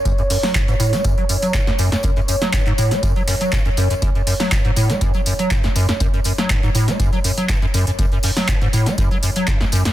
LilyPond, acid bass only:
\new Staff \with { instrumentName = "Acid bass" } { \clef bass \time 4/4 \key fis \minor \tempo 4 = 121 fis,16 fis,16 fis,16 fis16 fis,16 gis,16 a,16 a16 fis,16 fis16 fis,16 fis16 fis,16 fis,16 fis,16 fis,16 | fis,16 fis,16 fis,16 fis16 fis,16 gis,16 a,16 a16 fis,16 fis16 fis,16 fis16 fis,16 fis,16 fis,16 fis,16 | fis,16 fis,16 fis,16 fis16 fis,16 gis,16 a,16 a16 fis,16 fis16 fis,16 fis16 fis,16 fis,16 fis,16 fis,16 | fis,16 fis,16 fis,16 fis16 fis,16 gis,16 a,16 a16 fis,16 fis16 fis,16 fis16 fis,16 fis,16 fis,16 fis,16 |
fis,16 fis,16 fis,16 fis16 fis,16 gis,16 a,16 a16 fis,16 fis16 fis,16 fis16 fis,16 fis,16 fis,16 fis,16 | }